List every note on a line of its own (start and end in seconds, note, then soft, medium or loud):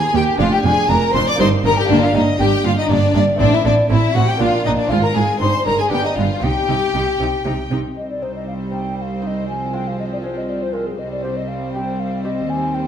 0.00 0.13 D#2 medium
0.00 0.34 A#3 medium
0.00 0.35 D#4 medium
0.00 0.35 G4 soft
0.00 0.15 G#4 medium
0.00 0.15 G#5 medium
0.00 0.17 G#5 medium
0.14 0.22 D#2 medium
0.14 0.37 D#2 medium
0.14 0.22 G4 medium
0.14 0.40 G4 medium
0.14 0.40 G5 medium
0.14 0.24 G5 medium
0.36 0.47 F1 medium
0.36 0.47 F2 medium
0.36 1.34 D4 medium
0.36 0.47 D4 medium
0.36 1.35 G#4 medium
0.40 0.63 F2 medium
0.40 0.52 F4 medium
0.40 0.45 F5 medium
0.40 0.52 F5 medium
0.52 0.65 G4 medium
0.52 0.67 G5 medium
0.52 0.65 G5 medium
0.63 0.72 F1 medium
0.63 0.72 F2 medium
0.63 0.87 F2 medium
0.63 0.73 D4 medium
0.63 0.90 G#4 medium
0.63 0.88 G#5 loud
0.63 0.91 G#5 medium
0.89 0.97 F1 medium
0.89 0.98 F2 medium
0.89 1.12 F2 medium
0.89 0.97 D4 medium
0.89 1.14 A#4 medium
0.89 1.14 A#5 medium
0.89 1.15 A#5 medium
1.14 1.22 F1 medium
1.14 1.22 F2 medium
1.14 1.37 F2 medium
1.14 1.23 D4 medium
1.14 1.27 C5 medium
1.14 1.20 C6 medium
1.14 1.27 C6 loud
1.27 1.40 D5 medium
1.27 1.34 D6 medium
1.27 1.40 D6 loud
1.35 1.47 G1 medium
1.35 1.84 A#3 medium
1.35 1.86 D#4 medium
1.35 1.86 G4 medium
1.39 1.48 G2 medium
1.39 1.62 G2 medium
1.39 1.47 D#4 medium
1.39 1.48 C5 medium
1.39 1.48 C6 loud
1.39 1.46 C6 medium
1.64 1.72 G1 medium
1.64 1.72 G2 medium
1.64 1.87 G2 medium
1.64 1.72 D#4 medium
1.64 1.77 A#4 medium
1.64 1.79 A#5 medium
1.64 1.78 A#5 medium
1.77 1.90 G4 medium
1.77 1.89 G5 medium
1.77 1.90 G5 medium
1.85 3.34 A#3 medium
1.85 3.34 D4 medium
1.85 3.35 G4 medium
1.89 1.97 G1 medium
1.89 2.12 G2 medium
1.89 1.97 G2 medium
1.89 1.98 A#3 medium
1.89 2.02 D4 loud
1.89 2.01 D5 medium
1.89 2.02 D5 medium
2.02 2.15 F4 medium
2.02 2.16 F5 medium
2.02 2.15 F5 medium
2.14 2.23 G1 medium
2.14 2.37 G2 medium
2.14 2.23 G2 medium
2.14 2.23 A#3 medium
2.14 2.24 D#4 medium
2.14 2.39 D#5 medium
2.14 2.40 D#5 medium
2.39 2.48 G1 medium
2.39 2.62 G2 medium
2.39 2.48 G2 medium
2.39 2.48 A#3 medium
2.39 2.65 G4 medium
2.39 2.45 G5 medium
2.39 2.65 G5 medium
2.64 2.73 G1 medium
2.64 2.87 G2 medium
2.64 2.73 G2 medium
2.64 2.72 A#3 medium
2.64 2.70 F4 medium
2.64 2.77 F5 loud
2.64 2.77 F5 medium
2.77 2.90 D#4 medium
2.77 2.91 D#5 medium
2.77 2.90 D#5 medium
2.89 2.98 G1 medium
2.89 2.98 G2 medium
2.89 3.13 G2 medium
2.89 2.97 A#3 medium
2.89 3.13 D4 medium
2.89 3.15 D5 medium
2.89 3.13 D5 loud
3.14 3.23 G1 medium
3.14 3.37 G2 medium
3.14 3.23 G2 medium
3.14 3.22 A#3 medium
3.14 3.23 D4 medium
3.14 3.22 D5 medium
3.14 3.21 E5 medium
3.20 3.40 D5 medium
3.36 4.35 A3 medium
3.36 4.36 C4 medium
3.36 3.52 D5 medium
3.40 3.48 A1 medium
3.40 3.48 A2 medium
3.40 3.63 A2 medium
3.40 3.48 C4 medium
3.40 3.53 D4 loud
3.40 3.55 D5 medium
3.52 3.65 E4 medium
3.52 3.67 E5 medium
3.52 3.65 E5 medium
3.65 3.73 A1 medium
3.65 3.87 A2 medium
3.65 3.73 A2 medium
3.65 3.73 C4 medium
3.65 3.73 D4 medium
3.65 3.73 D5 loud
3.65 3.89 D5 medium
3.90 3.98 A1 medium
3.90 4.12 A2 medium
3.90 3.98 A2 medium
3.90 3.98 C4 medium
3.90 4.14 E4 medium
3.90 4.17 E5 medium
3.90 4.15 E5 medium
4.14 4.23 A1 medium
4.14 4.37 A2 medium
4.14 4.23 A2 medium
4.14 4.24 C4 medium
4.14 4.28 F#4 medium
4.14 4.27 F#5 loud
4.14 4.30 F#5 medium
4.27 4.40 G4 medium
4.27 4.40 G5 medium
4.27 4.41 G5 medium
4.37 4.48 A#1 medium
4.37 4.48 A#2 medium
4.37 4.63 A#2 medium
4.37 4.87 A#3 medium
4.37 4.88 D4 medium
4.37 4.48 D4 medium
4.37 4.65 F4 medium
4.37 4.67 F5 medium
4.37 4.66 F5 medium
4.65 4.73 A#1 medium
4.65 4.73 A#2 medium
4.65 4.88 A#2 medium
4.65 4.74 D4 medium
4.65 4.70 D#4 medium
4.65 4.71 D#5 medium
4.65 4.80 D#5 medium
4.77 4.90 D4 medium
4.77 4.92 D5 medium
4.77 4.91 D5 medium
4.87 4.98 G#1 medium
4.87 5.13 G#2 medium
4.87 4.98 G#2 medium
4.87 5.37 C4 medium
4.87 5.38 F4 medium
4.87 5.03 F4 medium
4.87 4.95 F5 medium
4.87 5.02 F5 medium
4.91 4.99 F4 medium
5.03 5.15 A#4 medium
5.03 5.09 A#5 medium
5.03 5.15 A#5 medium
5.15 5.24 G#1 medium
5.15 5.23 G#2 medium
5.15 5.38 G#2 medium
5.15 5.25 F4 medium
5.15 5.41 G#4 medium
5.15 5.40 G#5 medium
5.38 5.49 G1 medium
5.38 5.49 G2 medium
5.38 5.64 G2 medium
5.38 5.88 C4 soft
5.38 5.89 D#4 soft
5.38 5.50 D#4 medium
5.38 5.66 C5 medium
5.38 5.65 C6 medium
5.66 5.74 G1 medium
5.66 5.89 G2 medium
5.66 5.74 G2 medium
5.66 5.75 D#4 medium
5.66 5.79 A#4 medium
5.66 5.78 A#5 medium
5.66 5.79 A#5 medium
5.78 5.91 G#4 medium
5.78 5.84 G#5 medium
5.78 5.91 G#5 medium
5.89 5.99 G1 medium
5.89 6.00 G2 medium
5.89 6.15 G2 medium
5.89 6.39 B3 medium
5.89 6.01 B3 medium
5.89 6.41 D4 medium
5.89 6.03 G4 medium
5.89 6.04 G5 medium
5.89 6.07 G5 medium
6.03 6.16 D#4 medium
6.03 6.17 D#5 medium
6.15 6.25 G1 medium
6.15 6.25 G2 medium
6.15 6.40 G2 medium
6.15 6.26 B3 medium
6.15 6.42 F4 medium
6.15 6.42 F5 medium
6.15 6.46 F5 medium
6.40 6.50 C2 medium
6.40 6.50 C3 medium
6.40 6.66 C3 medium
6.40 7.91 C4 soft
6.40 7.92 D#4 soft
6.40 6.51 D#4 medium
6.40 7.71 G4 medium
6.40 7.68 G5 medium
6.44 7.72 G5 medium
6.68 6.76 C2 medium
6.68 6.76 C3 medium
6.68 6.92 C3 medium
6.68 6.77 D#4 medium
6.94 7.02 C2 medium
6.94 7.02 C3 medium
6.94 7.17 C3 medium
6.94 7.03 D#4 medium
7.19 7.27 C2 medium
7.19 7.27 C3 medium
7.19 7.43 C3 medium
7.19 7.28 D#4 soft
7.45 7.53 C2 medium
7.45 7.68 C3 medium
7.45 7.53 C3 medium
7.45 7.54 D#4 medium
7.70 7.78 C2 medium
7.70 7.78 C3 medium
7.70 7.94 C3 medium
7.70 7.80 D#4 soft
7.96 10.95 C2 soft
7.96 9.44 G3 soft
7.96 10.95 C4 soft
7.96 10.95 C5 soft
7.96 8.09 D#5 medium
8.10 8.24 D5 soft
8.22 8.68 C4 soft
8.22 8.68 D#4 soft
8.22 8.35 C5 medium
8.36 8.47 D#5 soft
8.48 8.54 F5 medium
8.71 9.18 C4 soft
8.71 9.19 D#4 soft
8.71 8.97 G5 medium
8.98 9.23 F5 medium
8.98 9.03 G5 soft
9.22 9.45 C4 soft
9.22 9.45 D#4 soft
9.22 9.28 F5 soft
9.27 9.48 D#5 soft
9.47 10.99 F3 soft
9.47 9.75 G#5 medium
9.73 10.19 G#3 soft
9.73 10.19 C4 soft
9.73 10.20 F4 soft
9.73 9.89 G5 medium
9.88 9.99 F5 soft
10.00 10.05 D#5 medium
10.13 10.18 D5 soft
10.23 10.70 G#3 soft
10.23 10.70 C4 soft
10.23 10.70 F4 soft
10.23 10.39 C5 medium
10.38 10.51 D#5 soft
10.49 10.64 D5 soft
10.63 10.74 C5 soft
10.73 10.96 G#3 soft
10.73 10.96 C4 soft
10.73 10.97 F4 soft
10.73 10.88 A#4 soft
10.87 11.00 G#4 soft
10.98 12.46 C2 soft
10.98 12.87 G3 soft
10.98 12.87 C4 soft
10.98 12.87 C5 soft
10.98 11.11 D#5 medium
11.12 11.24 D5 medium
11.23 11.70 C4 soft
11.23 11.70 G4 soft
11.23 11.38 C5 medium
11.37 11.49 D#5 medium
11.48 11.72 F5 medium
11.73 12.20 C4 soft
11.73 12.21 G4 soft
11.73 12.01 G5 medium
12.00 12.24 F5 medium
12.24 12.47 C4 soft
12.24 12.47 G4 soft
12.24 12.51 D#5 medium
12.48 12.87 D#2 medium
12.48 12.87 D#2 soft
12.48 12.76 G#5 medium
12.74 12.87 C4 soft
12.74 12.87 C5 soft
12.74 12.87 G5 medium